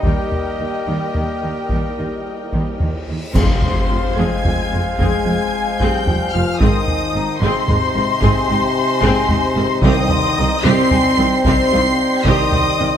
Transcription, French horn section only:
0.00 3.04 G3 medium
0.04 3.05 A#3 medium
3.36 4.14 C3 medium
4.18 4.96 G#3 medium
4.97 5.78 G#3 medium
5.79 6.34 G3 medium
6.33 6.60 F3 medium
6.60 7.41 D#3 medium
7.41 9.79 C3 loud
9.84 10.48 D#3 loud
10.65 11.44 C4 loud
11.46 12.24 C4 loud
12.24 12.97 D#3 loud

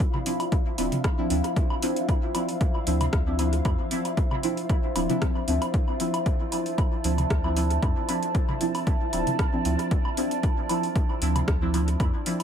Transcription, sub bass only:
0.78 0.89 D1 medium
1.30 1.41 D2 medium
2.87 3.08 D2 loud
3.13 3.61 D2 medium
3.65 3.76 F2 medium
4.96 5.06 D1 medium
5.48 5.59 D2 medium
7.04 7.25 D2 loud
7.30 7.78 D2 medium
7.83 7.93 F2 medium
9.13 9.24 D1 medium
9.65 9.76 D2 medium
11.22 11.42 D2 loud
11.48 11.96 D2 medium
12.00 12.11 F2 medium

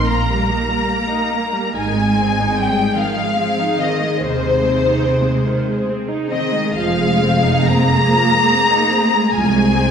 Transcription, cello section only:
0.08 1.72 A#3 medium
1.75 2.55 G#3 medium
2.57 2.97 G3 medium
2.98 3.80 F3 medium
3.80 4.22 D#3 medium
4.23 5.88 C3 medium
6.31 6.73 D#3 medium
6.76 7.68 F3 medium
7.68 9.34 A#3 medium
9.34 9.91 G#3 medium

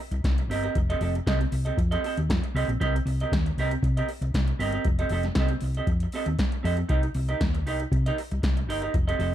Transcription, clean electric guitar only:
0.12 muted clean electric guitar stroke soft
0.25 muted clean electric guitar stroke soft
0.39 muted clean electric guitar stroke soft
0.50 0.64 C4 medium
0.50 0.64 G4 medium
0.50 0.63 A#4 medium
0.50 0.62 D#5 medium
0.63 0.75 C4 medium
0.63 0.76 G4 medium
0.63 0.76 A#4 medium
0.63 0.75 D#5 medium
0.76 muted clean electric guitar stroke soft
0.90 1.00 C4 medium
0.90 1.00 G4 medium
0.90 1.01 A4 medium
0.90 1.01 D#5 medium
1.01 1.14 C4 medium
1.01 1.15 G4 medium
1.01 1.15 A4 medium
1.01 1.15 D#5 medium
1.16 muted clean electric guitar stroke medium
1.27 1.43 C4 medium
1.27 1.40 G4 medium
1.27 1.40 A4 loud
1.27 1.39 D#5 loud
1.40 muted clean electric guitar stroke soft
1.52 muted clean electric guitar stroke soft
1.65 1.76 C4 medium
1.65 1.77 G4 medium
1.65 1.77 A4 medium
1.65 1.77 D#5 medium
1.77 muted clean electric guitar stroke soft
1.91 2.04 C4 medium
1.91 2.04 G4 medium
1.91 2.05 A4 medium
1.91 2.05 D#5 medium
2.05 2.17 C4 medium
2.05 2.18 G4 medium
2.05 2.18 A4 medium
2.05 2.17 D#5 medium
2.18 muted clean electric guitar stroke soft
2.30 muted clean electric guitar stroke soft
2.43 muted clean electric guitar stroke medium
2.55 2.72 C4 medium
2.55 2.69 G4 medium
2.55 2.68 A4 medium
2.55 2.68 D#5 loud
2.69 muted clean electric guitar stroke soft
2.80 2.97 C4 medium
2.80 2.95 G4 medium
2.80 2.94 A#4 medium
2.80 2.94 D#5 loud
2.95 muted clean electric guitar stroke soft
3.07 muted clean electric guitar stroke soft
3.21 3.33 C4 soft
3.21 3.33 G4 medium
3.21 3.33 A#4 medium
3.21 3.32 D#5 medium
3.46 muted clean electric guitar stroke soft
3.59 3.75 C4 medium
3.59 3.72 G4 medium
3.59 3.71 A#4 medium
3.59 3.71 D#5 loud
3.72 muted clean electric guitar stroke soft
3.84 muted clean electric guitar stroke soft
3.97 4.08 C4 medium
3.97 4.08 G4 medium
3.97 4.09 A#4 medium
3.97 4.09 D#5 medium
4.09 muted clean electric guitar stroke soft
4.23 muted clean electric guitar stroke soft
4.35 muted clean electric guitar stroke soft
4.48 muted clean electric guitar stroke soft
4.59 4.73 C4 medium
4.59 4.73 G4 loud
4.59 4.73 A#4 loud
4.59 4.72 D#5 medium
4.73 4.85 C4 medium
4.73 4.86 G4 medium
4.73 4.86 A#4 medium
4.73 4.85 D#5 medium
4.86 muted clean electric guitar stroke soft
4.99 5.10 C4 medium
4.99 5.11 G4 medium
4.99 5.11 A4 medium
4.99 5.11 D#5 medium
5.11 5.24 C4 medium
5.11 5.25 G4 medium
5.11 5.25 A4 medium
5.11 5.24 D#5 medium
5.25 muted clean electric guitar stroke soft
5.37 5.54 C4 medium
5.37 5.51 G4 medium
5.37 5.51 A4 medium
5.37 5.50 D#5 loud
5.51 muted clean electric guitar stroke soft
5.63 muted clean electric guitar stroke soft
5.77 5.87 C4 soft
5.77 5.88 G4 medium
5.77 5.88 A4 soft
5.77 5.88 D#5 medium
5.88 muted clean electric guitar stroke soft
6.03 muted clean electric guitar stroke soft
6.14 6.30 C4 medium
6.14 6.27 G4 medium
6.14 6.27 A4 medium
6.14 6.26 D#5 medium
6.28 muted clean electric guitar stroke soft
6.39 muted clean electric guitar stroke soft
6.52 muted clean electric guitar stroke soft
6.63 6.80 C4 medium
6.63 6.78 G4 medium
6.63 6.77 A4 medium
6.63 6.76 D#5 medium
6.78 muted clean electric guitar stroke soft
6.89 7.06 D#4 medium
6.89 7.03 G4 medium
6.89 7.03 A#4 medium
6.89 7.02 D#5 medium
7.03 muted clean electric guitar stroke soft
7.16 muted clean electric guitar stroke soft
7.29 7.42 D#4 soft
7.29 7.41 G4 medium
7.29 7.41 A#4 medium
7.29 7.41 D#5 medium
7.54 muted clean electric guitar stroke soft
7.67 7.83 D#4 medium
7.67 7.81 G4 medium
7.67 7.80 A#4 medium
7.67 7.80 D#5 medium
7.81 muted clean electric guitar stroke soft
7.93 muted clean electric guitar stroke soft
8.06 8.18 D#4 medium
8.06 8.18 G4 medium
8.06 8.19 A#4 medium
8.06 8.19 D#5 medium
8.19 muted clean electric guitar stroke soft
8.31 muted clean electric guitar stroke soft
8.42 muted clean electric guitar stroke soft
8.57 muted clean electric guitar stroke medium
8.69 8.82 D#4 medium
8.69 8.82 G4 medium
8.69 8.81 A#4 medium
8.69 8.81 D#5 medium
8.82 8.94 D#4 medium
8.82 8.93 G4 medium
8.82 8.94 A#4 medium
8.82 8.94 D#5 medium
8.94 muted clean electric guitar stroke soft
9.08 9.17 C4 medium
9.08 9.18 G4 medium
9.08 9.19 A4 medium
9.08 9.20 D#5 medium
9.19 9.33 C4 medium
9.19 9.33 G4 medium
9.19 9.33 A4 medium
9.19 9.33 D#5 medium

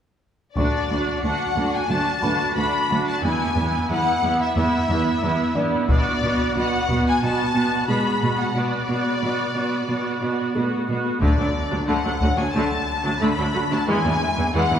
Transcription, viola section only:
0.56 0.88 D4 soft
0.56 0.89 F#4 soft
0.89 1.21 D4 soft
0.89 1.21 F#4 soft
1.22 1.55 D4 soft
1.22 1.55 F#4 soft
1.56 1.88 D4 soft
1.56 1.88 F#4 soft
1.89 2.21 D4 soft
1.89 2.21 F#4 soft
2.22 2.55 D4 soft
2.22 2.55 F#4 soft
2.56 2.88 D4 soft
2.56 2.88 F#4 soft
2.89 3.22 D4 soft
2.89 3.22 F#4 soft
3.22 3.54 B3 soft
3.22 3.54 E4 soft
3.55 3.86 B3 soft
3.55 3.87 E4 soft
3.88 4.21 B3 soft
3.88 4.21 E4 soft
4.22 4.53 B3 soft
4.22 4.53 E4 soft
4.54 4.87 B3 soft
4.54 4.87 E4 soft
4.88 5.20 B3 soft
4.88 5.20 E4 soft
5.21 5.54 B3 soft
5.21 5.54 E4 soft
5.55 5.88 B3 soft
5.55 5.88 E4 soft
5.89 6.22 B3 soft
5.89 6.21 F#4 medium
6.23 6.55 B3 soft
6.23 6.55 F#4 soft
6.56 6.88 B3 soft
6.56 6.88 F#4 medium
6.89 7.21 B3 soft
6.89 7.21 F#4 soft
7.22 7.55 B3 soft
7.22 7.55 F#4 soft
7.56 7.88 B3 soft
7.56 7.88 F#4 soft
7.89 8.21 B3 soft
7.89 8.21 F#4 soft
8.22 8.54 B3 soft
8.22 8.53 F#4 soft
8.55 8.88 B3 soft
8.55 8.87 F#4 soft
8.89 9.21 B3 soft
8.89 9.21 F#4 soft
9.22 9.53 B3 soft
9.22 9.53 F#4 soft
9.55 9.86 B3 soft
9.55 9.86 F#4 soft
9.87 10.20 B3 soft
9.87 10.20 F#4 soft
10.21 10.54 B3 soft
10.21 10.54 F#4 soft
10.55 10.86 B3 soft
10.55 10.87 F#4 soft
10.88 11.21 B3 soft
10.88 11.21 F#4 soft
11.20 11.37 D3 medium
11.20 11.37 A3 soft
11.38 11.45 F#3 soft
11.38 11.45 D4 soft
11.71 11.78 F#3 soft
11.71 11.78 D4 soft
11.87 12.03 D3 medium
11.87 12.03 A3 soft
12.05 12.12 F#3 soft
12.05 12.12 D4 soft
12.21 12.28 A3 soft
12.21 12.29 F#4 soft
12.37 12.44 F#3 soft
12.37 12.44 D4 soft
12.54 12.70 D3 medium
12.54 12.70 A3 medium
13.04 13.11 F#3 soft
13.04 13.11 D4 soft
13.20 13.37 D3 soft
13.20 13.36 A3 medium
13.37 13.44 F#3 soft
13.37 13.44 D4 soft
13.54 13.61 A3 soft
13.54 13.61 F#4 soft
13.71 13.78 F#3 soft
13.71 13.78 D4 soft
13.87 14.03 E3 medium
13.87 14.03 G#3 medium
14.04 14.12 E3 soft
14.04 14.11 B3 soft
14.38 14.45 E3 soft
14.38 14.45 B3 soft
14.55 14.71 E3 medium
14.55 14.71 G#3 medium
14.72 14.78 E3 soft
14.72 14.78 B3 soft

